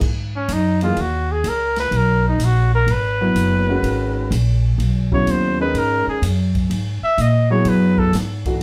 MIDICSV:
0, 0, Header, 1, 6, 480
1, 0, Start_track
1, 0, Key_signature, 5, "minor"
1, 0, Tempo, 477707
1, 14, Time_signature, 4, 2, 24, 8
1, 8670, End_track
2, 0, Start_track
2, 0, Title_t, "Trumpet"
2, 0, Program_c, 0, 56
2, 365, Note_on_c, 0, 61, 80
2, 534, Note_on_c, 0, 63, 80
2, 549, Note_off_c, 0, 61, 0
2, 830, Note_off_c, 0, 63, 0
2, 836, Note_on_c, 0, 65, 83
2, 1013, Note_on_c, 0, 66, 77
2, 1028, Note_off_c, 0, 65, 0
2, 1326, Note_on_c, 0, 68, 82
2, 1341, Note_off_c, 0, 66, 0
2, 1491, Note_on_c, 0, 70, 82
2, 1506, Note_off_c, 0, 68, 0
2, 1796, Note_off_c, 0, 70, 0
2, 1808, Note_on_c, 0, 71, 97
2, 1979, Note_on_c, 0, 70, 82
2, 1994, Note_off_c, 0, 71, 0
2, 2280, Note_off_c, 0, 70, 0
2, 2292, Note_on_c, 0, 63, 71
2, 2460, Note_on_c, 0, 66, 81
2, 2475, Note_off_c, 0, 63, 0
2, 2757, Note_off_c, 0, 66, 0
2, 2763, Note_on_c, 0, 70, 91
2, 2932, Note_on_c, 0, 71, 88
2, 2947, Note_off_c, 0, 70, 0
2, 4355, Note_off_c, 0, 71, 0
2, 5166, Note_on_c, 0, 73, 85
2, 5335, Note_on_c, 0, 72, 90
2, 5350, Note_off_c, 0, 73, 0
2, 5639, Note_off_c, 0, 72, 0
2, 5643, Note_on_c, 0, 71, 92
2, 5814, Note_on_c, 0, 70, 87
2, 5830, Note_off_c, 0, 71, 0
2, 6117, Note_off_c, 0, 70, 0
2, 6123, Note_on_c, 0, 68, 87
2, 6259, Note_off_c, 0, 68, 0
2, 7074, Note_on_c, 0, 76, 101
2, 7248, Note_on_c, 0, 75, 92
2, 7263, Note_off_c, 0, 76, 0
2, 7541, Note_off_c, 0, 75, 0
2, 7547, Note_on_c, 0, 73, 88
2, 7726, Note_on_c, 0, 71, 90
2, 7741, Note_off_c, 0, 73, 0
2, 8030, Note_on_c, 0, 69, 89
2, 8045, Note_off_c, 0, 71, 0
2, 8182, Note_off_c, 0, 69, 0
2, 8670, End_track
3, 0, Start_track
3, 0, Title_t, "Grand piano"
3, 0, Program_c, 1, 0
3, 826, Note_on_c, 1, 52, 73
3, 831, Note_on_c, 1, 58, 67
3, 833, Note_on_c, 1, 63, 64
3, 840, Note_on_c, 1, 68, 76
3, 963, Note_off_c, 1, 52, 0
3, 966, Note_off_c, 1, 58, 0
3, 967, Note_off_c, 1, 63, 0
3, 970, Note_off_c, 1, 68, 0
3, 3225, Note_on_c, 1, 54, 73
3, 3227, Note_on_c, 1, 59, 64
3, 3231, Note_on_c, 1, 64, 63
3, 3231, Note_on_c, 1, 71, 81
3, 3670, Note_off_c, 1, 54, 0
3, 3671, Note_off_c, 1, 59, 0
3, 3673, Note_off_c, 1, 64, 0
3, 3673, Note_off_c, 1, 71, 0
3, 3702, Note_on_c, 1, 51, 68
3, 3708, Note_on_c, 1, 56, 62
3, 3711, Note_on_c, 1, 61, 66
3, 3714, Note_on_c, 1, 66, 78
3, 4307, Note_off_c, 1, 51, 0
3, 4310, Note_off_c, 1, 56, 0
3, 4312, Note_off_c, 1, 61, 0
3, 4313, Note_off_c, 1, 66, 0
3, 5142, Note_on_c, 1, 54, 63
3, 5145, Note_on_c, 1, 49, 67
3, 5149, Note_on_c, 1, 64, 72
3, 5151, Note_on_c, 1, 59, 62
3, 5589, Note_off_c, 1, 54, 0
3, 5590, Note_off_c, 1, 49, 0
3, 5592, Note_off_c, 1, 64, 0
3, 5594, Note_off_c, 1, 59, 0
3, 5628, Note_on_c, 1, 51, 71
3, 5633, Note_on_c, 1, 56, 67
3, 5637, Note_on_c, 1, 61, 66
3, 5641, Note_on_c, 1, 63, 80
3, 6230, Note_off_c, 1, 51, 0
3, 6233, Note_off_c, 1, 56, 0
3, 6234, Note_off_c, 1, 61, 0
3, 6236, Note_off_c, 1, 63, 0
3, 7540, Note_on_c, 1, 54, 76
3, 7541, Note_on_c, 1, 59, 70
3, 7545, Note_on_c, 1, 64, 74
3, 7548, Note_on_c, 1, 68, 86
3, 8145, Note_off_c, 1, 54, 0
3, 8145, Note_off_c, 1, 59, 0
3, 8147, Note_off_c, 1, 64, 0
3, 8149, Note_off_c, 1, 68, 0
3, 8498, Note_on_c, 1, 52, 61
3, 8501, Note_on_c, 1, 57, 57
3, 8505, Note_on_c, 1, 66, 65
3, 8506, Note_on_c, 1, 63, 53
3, 8640, Note_off_c, 1, 52, 0
3, 8641, Note_off_c, 1, 57, 0
3, 8643, Note_off_c, 1, 63, 0
3, 8643, Note_off_c, 1, 66, 0
3, 8670, End_track
4, 0, Start_track
4, 0, Title_t, "Upright bass"
4, 0, Program_c, 2, 32
4, 8, Note_on_c, 2, 44, 78
4, 477, Note_off_c, 2, 44, 0
4, 486, Note_on_c, 2, 42, 91
4, 956, Note_off_c, 2, 42, 0
4, 968, Note_on_c, 2, 39, 82
4, 1437, Note_off_c, 2, 39, 0
4, 1447, Note_on_c, 2, 37, 84
4, 1917, Note_off_c, 2, 37, 0
4, 1921, Note_on_c, 2, 35, 82
4, 2389, Note_off_c, 2, 35, 0
4, 2395, Note_on_c, 2, 34, 89
4, 2871, Note_off_c, 2, 34, 0
4, 2880, Note_on_c, 2, 32, 86
4, 3354, Note_off_c, 2, 32, 0
4, 3364, Note_on_c, 2, 30, 80
4, 3836, Note_off_c, 2, 30, 0
4, 3842, Note_on_c, 2, 32, 84
4, 4315, Note_off_c, 2, 32, 0
4, 4328, Note_on_c, 2, 34, 95
4, 4798, Note_off_c, 2, 34, 0
4, 4803, Note_on_c, 2, 35, 83
4, 5276, Note_off_c, 2, 35, 0
4, 5290, Note_on_c, 2, 39, 82
4, 5760, Note_off_c, 2, 39, 0
4, 5770, Note_on_c, 2, 44, 81
4, 6074, Note_off_c, 2, 44, 0
4, 6248, Note_on_c, 2, 42, 89
4, 6718, Note_off_c, 2, 42, 0
4, 6731, Note_on_c, 2, 44, 83
4, 7034, Note_off_c, 2, 44, 0
4, 7211, Note_on_c, 2, 46, 80
4, 7679, Note_off_c, 2, 46, 0
4, 7686, Note_on_c, 2, 42, 81
4, 8156, Note_off_c, 2, 42, 0
4, 8165, Note_on_c, 2, 44, 89
4, 8635, Note_off_c, 2, 44, 0
4, 8670, End_track
5, 0, Start_track
5, 0, Title_t, "Muted upright bass strokes"
5, 6098, Note_on_c, 9, 29, 41
5, 6198, Note_off_c, 9, 29, 0
5, 7053, Note_on_c, 9, 29, 39
5, 7154, Note_off_c, 9, 29, 0
5, 8670, End_track
6, 0, Start_track
6, 0, Title_t, "Drums"
6, 10, Note_on_c, 9, 49, 73
6, 13, Note_on_c, 9, 36, 71
6, 111, Note_off_c, 9, 49, 0
6, 114, Note_off_c, 9, 36, 0
6, 487, Note_on_c, 9, 44, 62
6, 487, Note_on_c, 9, 51, 71
6, 587, Note_off_c, 9, 44, 0
6, 587, Note_off_c, 9, 51, 0
6, 813, Note_on_c, 9, 51, 45
6, 913, Note_off_c, 9, 51, 0
6, 970, Note_on_c, 9, 51, 59
6, 1071, Note_off_c, 9, 51, 0
6, 1447, Note_on_c, 9, 44, 53
6, 1447, Note_on_c, 9, 51, 67
6, 1547, Note_off_c, 9, 44, 0
6, 1547, Note_off_c, 9, 51, 0
6, 1771, Note_on_c, 9, 51, 47
6, 1776, Note_on_c, 9, 38, 43
6, 1871, Note_off_c, 9, 51, 0
6, 1876, Note_off_c, 9, 38, 0
6, 1928, Note_on_c, 9, 51, 60
6, 2028, Note_off_c, 9, 51, 0
6, 2407, Note_on_c, 9, 44, 56
6, 2407, Note_on_c, 9, 51, 70
6, 2507, Note_off_c, 9, 44, 0
6, 2507, Note_off_c, 9, 51, 0
6, 2889, Note_on_c, 9, 51, 62
6, 2990, Note_off_c, 9, 51, 0
6, 3372, Note_on_c, 9, 44, 53
6, 3372, Note_on_c, 9, 51, 66
6, 3472, Note_off_c, 9, 44, 0
6, 3472, Note_off_c, 9, 51, 0
6, 3855, Note_on_c, 9, 51, 62
6, 3955, Note_off_c, 9, 51, 0
6, 4337, Note_on_c, 9, 44, 53
6, 4337, Note_on_c, 9, 51, 73
6, 4437, Note_off_c, 9, 44, 0
6, 4437, Note_off_c, 9, 51, 0
6, 4820, Note_on_c, 9, 51, 59
6, 4920, Note_off_c, 9, 51, 0
6, 5145, Note_on_c, 9, 36, 68
6, 5245, Note_off_c, 9, 36, 0
6, 5295, Note_on_c, 9, 44, 49
6, 5295, Note_on_c, 9, 51, 57
6, 5396, Note_off_c, 9, 44, 0
6, 5396, Note_off_c, 9, 51, 0
6, 5774, Note_on_c, 9, 51, 61
6, 5875, Note_off_c, 9, 51, 0
6, 6257, Note_on_c, 9, 44, 54
6, 6257, Note_on_c, 9, 51, 77
6, 6357, Note_off_c, 9, 44, 0
6, 6357, Note_off_c, 9, 51, 0
6, 6579, Note_on_c, 9, 51, 47
6, 6581, Note_on_c, 9, 36, 60
6, 6680, Note_off_c, 9, 51, 0
6, 6682, Note_off_c, 9, 36, 0
6, 6738, Note_on_c, 9, 51, 64
6, 6839, Note_off_c, 9, 51, 0
6, 7214, Note_on_c, 9, 44, 57
6, 7214, Note_on_c, 9, 51, 60
6, 7315, Note_off_c, 9, 44, 0
6, 7315, Note_off_c, 9, 51, 0
6, 7685, Note_on_c, 9, 51, 64
6, 7786, Note_off_c, 9, 51, 0
6, 8015, Note_on_c, 9, 36, 49
6, 8115, Note_off_c, 9, 36, 0
6, 8169, Note_on_c, 9, 44, 61
6, 8169, Note_on_c, 9, 51, 67
6, 8174, Note_on_c, 9, 38, 39
6, 8270, Note_off_c, 9, 44, 0
6, 8270, Note_off_c, 9, 51, 0
6, 8275, Note_off_c, 9, 38, 0
6, 8495, Note_on_c, 9, 36, 55
6, 8495, Note_on_c, 9, 51, 45
6, 8595, Note_off_c, 9, 36, 0
6, 8596, Note_off_c, 9, 51, 0
6, 8670, End_track
0, 0, End_of_file